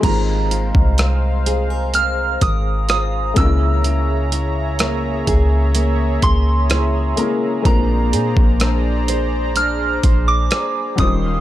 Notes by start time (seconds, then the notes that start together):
Already playing: D#3 C#4 G4 C5
0.01 G#1 G#3 A#3 D#4 G#4 C5 F5 A#5, kick, closed hi-hat, crash
0.05 C4 F4 A#4
0.51 F4, closed hi-hat
0.75 C2, kick
0.98 C4, cross-stick, closed hi-hat
1.46 G#4, closed hi-hat
1.70 A#4
1.94 C4 F6, closed hi-hat
2.41 G#1 A#4 D#6, kick, closed hi-hat
2.89 F4 D#6, cross-stick, closed hi-hat
3.34 C#2 C#3 G#3 A#3 C#4 C#5 E5 E6, kick, closed hi-hat
3.38 D#4 A#4
3.45 E4
3.84 C#3, closed hi-hat
4.32 E4, closed hi-hat
4.79 A#3, cross-stick, closed hi-hat
5.27 C#2 G#4, kick, closed hi-hat
5.75 A#3, closed hi-hat
6.22 C#2 G#4 C6, kick, closed hi-hat
6.70 E4, cross-stick, closed hi-hat
7.16 G#3 A#3 C#4 E4 A#4, closed hi-hat
7.62 A#1 G#3 A#3 C4 D4 C5 D5 A#5, kick, closed hi-hat
7.67 F4 A#4
8.13 A#2 G#4, closed hi-hat
8.37 A#1, kick
8.60 D4, cross-stick, closed hi-hat
9.08 C5, closed hi-hat
9.56 D4 F6, closed hi-hat
10.03 A#1 C5, kick, closed hi-hat
10.28 D6
10.51 G#4, cross-stick, closed hi-hat
10.96 D#1 D#3 F#3 C#4 D#4 G4 F5 C6 D#6, kick, closed hi-hat
11.00 G3 F4 C5